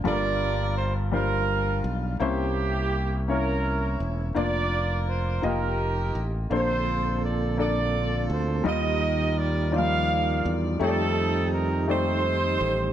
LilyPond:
<<
  \new Staff \with { instrumentName = "Horn section" } { \time 6/8 \key bes \major \tempo 4. = 56 << { d''4 c''8 bes'4 r8 | g'4. bes'4 r8 | d''4 c''8 bes'4 r8 | c''4 d''8 d''4 c''8 |
ees''4 d''8 f''4 r8 | a'4 bes'8 c''4. | } \\ { <f' bes'>4. <d' f'>4. | <bes e'>4. <des' e'>4. | <f' bes'>4. <ees' g'>4. | <f' a'>4. <f' a'>4. |
<g' bes'>4. <bes' d''>4. | <c' ees'>4. <ees' a'>4. | } >> }
  \new Staff \with { instrumentName = "Grand piano" } { \time 6/8 \key bes \major <g d' f' a' bes'>4 r8 <g d' f' c''>4 r8 | <bes des' e' c''>4 r8 <bes des' e' des''>4 r8 | <bes d' f' d''>4 r8 <bes f' g' ees''>4 r8 | <bes d' a' c''>4 r8 <bes d' a' d''>4 r8 |
<g ees' f' ees''>4 r8 <f g ees' f' d''>4 r8 | <a ees' g' des'' d''>4 r8 <a ees' g' d''>4 r8 | }
  \new Staff \with { instrumentName = "Grand piano" } { \clef bass \time 6/8 \key bes \major g,4. r4. | c4. r4. | r2. | bes,4. r4. |
ees4. r4. | r2. | }
  \new Staff \with { instrumentName = "Tonewheel organ" } { \time 6/8 \key bes \major r2. | r2. | r2. | <bes a'>2. |
<g f'>2. | <g g'>2. | }
  \new Staff \with { instrumentName = "Tonewheel organ" } { \clef bass \time 6/8 \key bes \major r2. | r2. | r2. | <d c'>2. |
<ees ees'>2.~ | <ees ees'>2. | }
  \new Staff \with { instrumentName = "Fingered electric bass" } { \clef bass \time 6/8 \key bes \major g,,2~ g,,8 ces,8 | c,2~ c,8 e,,8 | f,,4. f,,4 a,,8 | bes,,2~ bes,,8 d,8 |
ees,2~ ees,8 e,8 | f,2~ f,8 a,,8 | }
>>